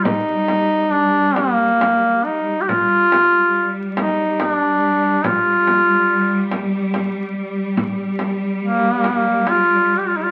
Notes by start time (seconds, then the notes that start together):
Already playing: G3
0.04 D#4, frame drum
0.48 frame drum
0.92 D4
1.36 A#3, frame drum
1.81 frame drum
2.25 D#4
2.61 G4
2.68 G3 F4, frame drum
3.12 frame drum
3.97 D#4, frame drum
4.40 D4, frame drum
5.24 F4, frame drum
5.67 frame drum
6.51 frame drum
6.94 frame drum
7.77 frame drum
8.19 frame drum
8.63 A#3
9.04 frame drum
9.47 F4, frame drum
9.98 G4
10.07 F4
10.16 D#4
10.24 F4